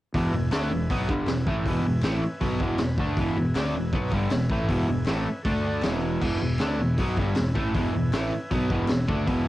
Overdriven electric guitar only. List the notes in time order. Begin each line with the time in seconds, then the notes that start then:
0.14 E2 B2 E3
0.33 E2 B2
0.51 D3 A3 D4
0.71 E2 B2
0.90 B2 F#3 B3
1.09 G2 D3 G3
1.28 E2 B2
1.47 A2 E3 A3
1.67 E2 B2 E3
1.86 E2 B2
2.04 A2 E3 A3
2.24 muted overdriven electric guitar stroke
2.41 B2 F#3 B3
2.62 E2 B2 E3
2.81 E2 B2
3.00 D3 A3 D4
3.19 E2 B2 E3
3.38 E2 B2
3.56 D3 A3 D4
3.76 E2 B2
3.93 B2 F#3 B3
4.12 G2 D3 G3
4.32 E2 B2
4.51 A2 E3 A3
4.69 E2 B2 E3
4.89 E2 B2
5.08 A2 E3 A3
5.27 muted overdriven electric guitar stroke
5.45 D3 A3 D4
5.83 E2 B2 E3
6.21 E2 B2 E3
6.42 E2 B2
6.61 D3 A3 D4
6.80 E2 B2
6.99 B2 F#3 B3
7.18 G2 D3 G3
7.36 E2 B2
7.55 A2 E3 A3
7.74 E2 B2 E3
7.94 E2 B2
8.13 A2 E3 A3
8.33 muted overdriven electric guitar stroke
8.51 B2 F#3 B3
8.71 E2 B2 E3
8.90 E2 B2
9.08 D3 A3 D4
9.27 E2 B2 E3